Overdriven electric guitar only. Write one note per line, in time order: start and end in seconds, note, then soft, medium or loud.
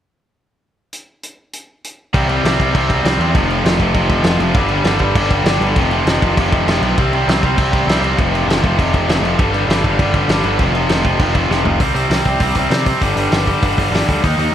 2.13 2.29 C3 loud
2.13 2.28 G3 medium
2.13 2.28 C4 medium
2.28 2.43 C3 medium
2.28 2.43 G3 medium
2.28 2.45 C4 medium
2.44 2.58 C3 medium
2.44 2.58 G3 medium
2.44 2.57 C4 medium
2.59 2.71 C3 medium
2.59 2.72 G3 medium
2.59 2.73 C4 loud
2.73 2.89 C3 loud
2.73 2.88 G3 loud
2.73 2.88 C4 medium
2.89 3.02 C3 medium
2.89 3.03 G3 medium
2.89 3.04 C4 loud
3.03 3.19 C3 medium
3.03 3.18 G3 medium
3.03 3.17 C4 medium
3.18 3.32 C3 medium
3.18 3.33 G3 medium
3.18 3.33 C4 medium
3.33 3.49 F2 medium
3.33 3.47 C3 medium
3.33 3.47 F3 loud
3.48 3.62 F2 medium
3.48 3.63 C3 medium
3.48 3.64 F3 loud
3.63 3.79 F2 medium
3.63 3.79 C3 medium
3.63 3.77 F3 medium
3.79 3.93 F2 medium
3.79 3.94 C3 medium
3.79 3.94 F3 medium
3.95 4.11 F2 medium
3.95 4.09 C3 loud
3.95 4.09 F3 loud
4.10 4.25 F2 medium
4.10 4.26 C3 medium
4.10 4.26 F3 loud
4.26 4.40 F2 medium
4.26 4.40 C3 loud
4.26 4.39 F3 loud
4.41 4.55 F2 medium
4.41 4.55 C3 medium
4.41 4.54 F3 loud
4.55 4.72 G2 medium
4.55 4.71 D3 medium
4.55 4.70 G3 loud
4.71 4.83 G2 medium
4.71 4.84 D3 loud
4.71 4.84 G3 medium
4.84 5.00 G2 medium
4.84 5.00 D3 loud
4.84 4.99 G3 medium
5.00 5.14 G2 medium
5.00 5.16 D3 medium
5.00 5.17 G3 medium
5.15 5.31 G2 medium
5.15 5.30 D3 loud
5.15 5.30 G3 loud
5.31 5.46 G2 medium
5.31 5.46 D3 medium
5.31 5.47 G3 medium
5.47 5.61 G2 medium
5.47 5.61 D3 medium
5.47 5.60 G3 medium
5.61 5.76 G2 medium
5.61 5.76 D3 medium
5.61 5.75 G3 medium
5.78 5.91 F2 medium
5.78 5.90 C3 loud
5.78 5.90 F3 loud
5.91 6.05 F2 medium
5.91 6.06 C3 medium
5.91 6.06 F3 medium
6.07 6.21 F2 medium
6.07 6.21 C3 medium
6.07 6.20 F3 medium
6.21 6.36 F2 medium
6.21 6.37 C3 medium
6.21 6.38 F3 medium
6.37 6.51 F2 medium
6.37 6.50 C3 loud
6.37 6.50 F3 loud
6.51 6.66 F2 medium
6.51 6.66 C3 medium
6.51 6.67 F3 loud
6.67 6.83 F2 medium
6.67 6.82 C3 medium
6.67 6.81 F3 medium
6.82 6.97 F2 medium
6.82 6.96 C3 medium
6.82 6.96 F3 medium
6.97 7.13 C3 medium
6.97 7.13 G3 loud
6.97 7.12 C4 loud
7.13 7.26 C3 medium
7.13 7.27 G3 medium
7.13 7.28 C4 medium
7.28 7.42 C3 medium
7.28 7.42 G3 medium
7.28 7.41 C4 medium
7.42 7.56 C3 medium
7.42 7.57 G3 medium
7.42 7.57 C4 loud
7.57 7.72 C3 medium
7.57 7.72 G3 loud
7.57 7.71 C4 loud
7.73 7.86 C3 medium
7.73 7.86 G3 medium
7.73 7.87 C4 loud
7.87 8.02 C3 medium
7.87 8.02 G3 loud
7.87 8.01 C4 medium
8.02 8.16 C3 medium
8.02 8.17 G3 medium
8.02 8.16 C4 medium
8.17 8.32 F2 medium
8.17 8.31 C3 medium
8.17 8.31 F3 loud
8.32 8.46 F2 medium
8.32 8.47 C3 medium
8.32 8.47 F3 medium
8.47 8.63 F2 medium
8.47 8.62 C3 medium
8.47 8.61 F3 medium
8.62 8.76 F2 medium
8.62 8.77 C3 medium
8.62 8.77 F3 medium
8.77 8.94 F2 loud
8.77 8.93 C3 loud
8.77 8.92 F3 loud
8.93 9.06 F2 medium
8.93 9.06 C3 medium
8.93 9.07 F3 medium
9.07 9.23 F2 medium
9.07 9.23 C3 medium
9.07 9.22 F3 loud
9.23 9.37 F2 medium
9.23 9.38 C3 medium
9.23 9.37 F3 medium
9.38 9.52 G2 medium
9.38 9.52 D3 loud
9.38 9.50 G3 loud
9.51 9.66 G2 medium
9.51 9.67 D3 medium
9.51 9.67 G3 medium
9.68 9.83 G2 medium
9.68 9.82 D3 medium
9.68 9.81 G3 medium
9.82 9.97 G2 medium
9.82 9.98 D3 medium
9.82 9.99 G3 loud
9.98 10.14 G2 medium
9.98 10.13 D3 medium
9.98 10.12 G3 medium
10.13 10.27 G2 medium
10.13 10.28 D3 medium
10.13 10.29 G3 loud
10.28 10.44 G2 medium
10.28 10.43 D3 medium
10.28 10.42 G3 medium
10.44 10.58 G2 medium
10.44 10.58 D3 medium
10.44 10.58 G3 medium
10.59 10.72 F2 medium
10.59 10.72 C3 medium
10.59 10.71 F3 loud
10.73 10.87 F2 medium
10.73 10.87 C3 medium
10.73 10.88 F3 medium
10.88 11.04 F2 medium
10.88 11.03 C3 medium
10.88 11.03 F3 medium
11.04 11.18 F2 medium
11.04 11.18 C3 medium
11.04 11.19 F3 medium
11.19 11.34 F2 medium
11.19 11.33 C3 loud
11.19 11.33 F3 loud
11.34 11.48 F2 medium
11.34 11.49 C3 medium
11.34 11.49 F3 medium
11.49 11.65 F2 medium
11.49 11.64 C3 medium
11.49 11.63 F3 loud
11.64 11.80 F2 medium
11.64 11.79 C3 medium
11.64 11.79 F3 medium
11.80 11.95 C3 medium
11.80 11.95 G3 medium
11.80 11.94 C4 loud
11.95 12.08 C3 medium
11.95 12.10 G3 medium
11.95 12.09 C4 medium
12.10 12.25 C3 medium
12.10 12.25 G3 medium
12.10 12.24 C4 loud
12.25 12.38 C3 medium
12.25 12.40 G3 medium
12.25 12.40 C4 medium
12.40 12.56 C3 medium
12.40 12.55 G3 medium
12.40 12.54 C4 medium
12.55 12.69 C3 medium
12.55 12.71 G3 medium
12.55 12.70 C4 medium
12.70 12.86 C3 medium
12.70 12.87 G3 loud
12.70 12.85 C4 loud
12.86 13.01 C3 medium
12.86 13.03 G3 medium
12.86 13.00 C4 loud
13.01 13.16 G2 medium
13.01 13.15 D3 medium
13.01 13.16 G3 medium
13.16 13.30 G2 medium
13.16 13.31 D3 medium
13.16 13.32 G3 medium
13.31 13.47 G2 medium
13.31 13.47 D3 medium
13.31 13.46 G3 loud
13.47 13.61 G2 medium
13.47 13.62 D3 medium
13.47 13.62 G3 medium
13.62 13.78 G2 medium
13.62 13.77 D3 medium
13.62 13.77 G3 loud
13.78 13.90 G2 medium
13.78 13.90 D3 medium
13.78 13.91 G3 loud
13.91 14.08 G2 medium
13.91 14.06 D3 loud
13.91 14.06 G3 loud
14.07 14.22 G2 medium
14.07 14.22 D3 medium
14.07 14.21 G3 medium
14.22 14.39 D#3 medium
14.22 14.39 A#3 medium
14.22 14.37 D#4 medium
14.38 14.51 D#3 medium
14.38 14.52 A#3 medium
14.38 14.53 D#4 loud